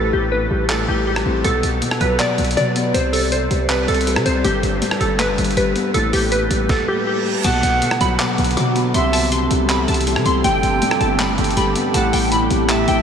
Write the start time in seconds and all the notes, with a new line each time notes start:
Already playing: A1 A2
0.13 A1 G4
0.32 A2 B4
0.51 A1 G3
0.69 A2 A4, clap
0.88 A1 A2 G4
1.07 G3 G4
1.16 cross-stick
1.26 A1 C4
1.44 B1 B2 A4, closed hi-hat
1.63 B1, closed hi-hat
1.82 B2, closed hi-hat
1.91 cross-stick
2.01 B1 F#3 B4, closed hi-hat
2.19 B2 D5, clap, closed hi-hat
2.38 B1 B2, closed hi-hat
2.44 closed hi-hat
2.51 closed hi-hat
2.57 B2 F#3 D5, closed hi-hat
2.76 B3, closed hi-hat
2.94 C2 C3 C5, closed hi-hat
3.13 A4, open hi-hat
3.32 C3 C5, closed hi-hat
3.50 C2 G3, closed hi-hat
3.69 C3 B4, clap, closed hi-hat
3.88 C2 C3 A4, closed hi-hat
3.94 closed hi-hat
4.01 closed hi-hat
4.07 G3, closed hi-hat
4.16 C3, cross-stick
4.26 C2 C4 C5, closed hi-hat
4.44 G1 G2 G4, closed hi-hat
4.63 G1, closed hi-hat
4.82 G2, closed hi-hat
4.91 cross-stick
5.00 G1 G3 A4, closed hi-hat
5.19 G2 B4, clap, closed hi-hat
5.29 F#1
5.38 G1 G2, closed hi-hat
5.44 closed hi-hat
5.51 closed hi-hat
5.57 G1 G3 B4, closed hi-hat
5.76 B3, closed hi-hat
5.94 A1 A2 A4, closed hi-hat
6.13 A1 G4, open hi-hat
6.32 A2 B4, closed hi-hat
6.51 A1 G3, closed hi-hat
6.69 A4, kick, snare, reverse cymbal
6.88 G4
7.07 G4
7.44 B1 B2 A4 F#5 A5, closed hi-hat, crash
7.63 B1, closed hi-hat
7.82 B2, closed hi-hat
7.91 cross-stick
8.01 B1 F#3 B5, closed hi-hat
8.19 B2 D6, clap, closed hi-hat
8.38 B1 B2, closed hi-hat
8.44 closed hi-hat
8.51 closed hi-hat
8.57 B2 F#3 D6, closed hi-hat
8.76 B3, closed hi-hat
8.94 C2 C3 G4 E5 C6, closed hi-hat
9.13 A5, open hi-hat
9.32 C3 C6, closed hi-hat
9.51 C2 G3, closed hi-hat
9.69 C3 B5, clap, closed hi-hat
9.88 C2 C3 A5, closed hi-hat
9.94 closed hi-hat
10.01 closed hi-hat
10.07 G3, closed hi-hat
10.16 C3, cross-stick
10.26 C2 C4 C6, closed hi-hat
10.44 G1 G2 G5, closed hi-hat
10.63 G1, closed hi-hat
10.82 G2, closed hi-hat
10.91 cross-stick
11.01 G1 G3 A5, closed hi-hat
11.19 G2 B5, clap, closed hi-hat
11.29 F#1
11.38 G1 G2, closed hi-hat
11.44 closed hi-hat
11.51 closed hi-hat
11.57 G1 G3 B5, closed hi-hat
11.76 B3, closed hi-hat
11.94 A1 A2 F#5 A5, closed hi-hat
12.13 A1 G5, open hi-hat
12.32 A2 B5, closed hi-hat
12.51 A1 G3, closed hi-hat
12.69 A2 E5 A5, clap, closed hi-hat
12.88 A1 A2 G5, closed hi-hat